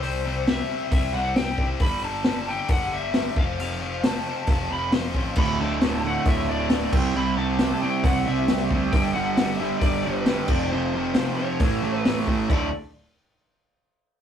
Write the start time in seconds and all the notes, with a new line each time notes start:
Already playing: C2
0.03 C3 G3 C4 C5, open hi-hat
0.25 C3 G3 C4
0.47 C3 G3 C4 E5, snare, open hi-hat
0.70 C3 G3 C4
0.91 C2 C3 G3 C4 E5, kick, open hi-hat
1.13 C2 C3 G3 C4 F#5
1.36 C3 G3 C4 G5, snare, open hi-hat
1.58 C2 C3 G3 C4, kick
1.80 G1 G2 D3 G3 B5, kick, open hi-hat
2.03 G2 D3 G3 A5
2.24 G2 D3 G3, snare, open hi-hat
2.47 G2 D3 G3 G5
2.68 G1 G2 D3 G3 F#5, kick, open hi-hat
2.92 G2 D3 G3 E5
3.14 G2 D3 G3, snare, open hi-hat
3.36 F1 F2 C3 F3 F5, kick
3.59 F2 C3 F3 F5, open hi-hat
3.81 F2 C3 F3
4.03 F2 C3 F3 A5, snare, open hi-hat
4.27 F2 C3 F3
4.47 F1 F2 C3, kick, open hi-hat
4.51 F3 A5
4.70 F1 F2 C3 F3 B5
4.92 F2 C3 F3 C6, snare, open hi-hat
5.14 A1 F2 C3 F3, kick
5.36 D1 D2 A2 D3 B5, kick, crash
5.60 D2 A2 D3 A5
5.81 D2 A2 D3, snare, open hi-hat
6.05 D2 A2 D3 F#5
6.25 D1 D2 A2 D3 E5, kick, open hi-hat
6.50 D2 A2 D3 D5
6.70 D2 A2 D3, snare, open hi-hat
6.92 C2 C3 G3 C4, kick, crash
7.16 C3 G3 C4 B5
7.37 C3 G3 C4 A5
7.59 C3 G3 C4, snare, open hi-hat
7.81 C3 G3 C4 G5
8.03 C2 C3 G3 C4 F#5, kick, open hi-hat
8.25 C2 C3 G3 C4 E5
8.48 C3 G3 C4, snare, open hi-hat
8.70 D2 C3 G3 C4, kick
8.92 G1 G2 D3 G3 G5, kick, open hi-hat
9.13 G2 F#5
9.18 D3 G3
9.37 G2 D3 G3, snare, open hi-hat
9.57 G2 D3 G3 E5
9.79 G1 G2 D3 D5, kick, open hi-hat
9.83 G3
10.01 G2 D3 G3 B4
10.26 G2 D3 G3, snare, open hi-hat
10.46 F1 F2 D5, kick, crash
10.51 C3 F3
10.69 F2 C3 F3 C5
10.94 F2 C3 F3
11.14 F2 C3 C5, snare, open hi-hat
11.19 F3
11.36 F2 C3 F3 C#5
11.60 A1 A2 E3 A3, kick, open hi-hat
11.82 A1 A2 E3 A3
11.98 B4
12.05 A2 E3 A3, snare, open hi-hat
12.27 A1 A2 E3 A3, kick
12.49 D1 D2 A2 D3 A3 E4 D5, kick, crash